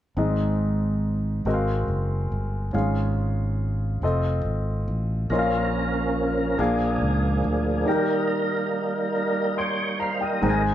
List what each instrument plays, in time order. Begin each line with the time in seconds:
0.17 fingered electric bass G#1, grand piano G#2 C4 D#4 G#4 D#5
1.45 fingered electric bass G#1, grand piano G#3 C4 F#4 A#4 D#5
1.54 grand piano F5
1.88 fingered electric bass F#1
2.32 fingered electric bass G1
2.73 fingered electric bass G#1, grand piano G#2 C#4 F4 G#4 F5
4.02 fingered electric bass F1, grand piano C4 F4 A4 D#5
4.45 fingered electric bass G#1
4.88 fingered electric bass A1
5.30 fingered electric bass A#1, grand piano A#2 C#4 F4 A#4 D#5, tonewheel organ F3 A#3 C#4 A#4
5.39 grand piano F5
6.58 fingered electric bass A#1, grand piano A#2 D4 G#4 A#4 F5, tonewheel organ F3 A#3 D4 G#4
7.01 fingered electric bass C#2
7.44 fingered electric bass D2
7.86 grand piano D#3 D#4 G4 A#4 G5, tonewheel organ G3 A#3 D#4 A#4
9.57 tonewheel organ C#5 G5, grand piano C6
10.00 tonewheel organ C5 F5, grand piano A#5
10.21 tonewheel organ A#4 D#5, grand piano G5
10.42 fingered electric bass G#1, grand piano G#2 D#4 G#4 C5 G5
10.50 grand piano G#5